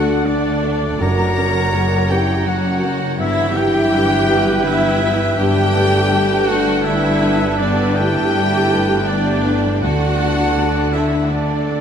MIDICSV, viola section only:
0, 0, Header, 1, 2, 480
1, 0, Start_track
1, 0, Tempo, 733496
1, 660, Time_signature, 3, 2, 24, 8
1, 4485, Tempo, 745342
1, 7675, End_track
2, 0, Start_track
2, 0, Title_t, "Viola section"
2, 0, Program_c, 0, 48
2, 0, Note_on_c, 0, 66, 112
2, 167, Note_off_c, 0, 66, 0
2, 168, Note_on_c, 0, 62, 106
2, 660, Note_on_c, 0, 70, 110
2, 661, Note_off_c, 0, 62, 0
2, 1361, Note_off_c, 0, 70, 0
2, 1376, Note_on_c, 0, 67, 107
2, 1615, Note_off_c, 0, 67, 0
2, 1616, Note_on_c, 0, 66, 100
2, 2087, Note_on_c, 0, 64, 124
2, 2091, Note_off_c, 0, 66, 0
2, 2321, Note_off_c, 0, 64, 0
2, 2326, Note_on_c, 0, 67, 127
2, 3037, Note_on_c, 0, 64, 127
2, 3045, Note_off_c, 0, 67, 0
2, 3522, Note_off_c, 0, 64, 0
2, 3522, Note_on_c, 0, 67, 127
2, 4228, Note_off_c, 0, 67, 0
2, 4240, Note_on_c, 0, 66, 127
2, 4478, Note_on_c, 0, 64, 127
2, 4482, Note_off_c, 0, 66, 0
2, 4963, Note_off_c, 0, 64, 0
2, 4966, Note_on_c, 0, 62, 121
2, 5207, Note_off_c, 0, 62, 0
2, 5212, Note_on_c, 0, 67, 118
2, 5920, Note_on_c, 0, 62, 120
2, 5926, Note_off_c, 0, 67, 0
2, 6395, Note_on_c, 0, 66, 121
2, 6396, Note_off_c, 0, 62, 0
2, 7097, Note_off_c, 0, 66, 0
2, 7115, Note_on_c, 0, 64, 96
2, 7355, Note_on_c, 0, 62, 98
2, 7357, Note_off_c, 0, 64, 0
2, 7675, Note_off_c, 0, 62, 0
2, 7675, End_track
0, 0, End_of_file